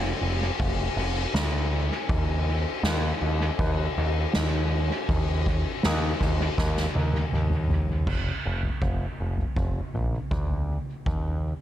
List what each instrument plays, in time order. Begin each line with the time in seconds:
Already playing: picked electric bass F1
0.21 picked electric bass F1, ride
0.59 picked electric bass F1, kick, ride
0.96 picked electric bass F1, ride
1.34 picked electric bass D2, snare, ride
1.73 ride
2.09 picked electric bass D#2, kick, ride
2.46 ride
2.83 picked electric bass D#2, snare, ride
3.21 picked electric bass D#2, ride
3.59 picked electric bass D#2, kick, ride
3.97 picked electric bass D#2, ride
4.33 picked electric bass D#2, snare, ride
4.71 ride
5.09 picked electric bass D#2, kick, ride
5.46 kick, ride
5.83 picked electric bass D#2, snare, ride
6.21 picked electric bass D#2, kick, snare, ride
6.58 picked electric bass D#2, kick, snare
6.77 snare
6.95 picked electric bass D#2, high tom
7.14 high tom
7.32 picked electric bass D#2, mid tom
7.50 mid tom
7.69 floor tom
7.87 floor tom
8.06 picked electric bass F1, kick, floor tom, crash
8.46 picked electric bass F1
8.63 floor tom
8.82 picked electric bass F1, kick
9.20 picked electric bass F1
9.37 floor tom
9.56 picked electric bass F1, kick
9.94 picked electric bass A#1, floor tom
10.31 picked electric bass D2, kick
10.50 floor tom
11.06 picked electric bass D#2, kick, floor tom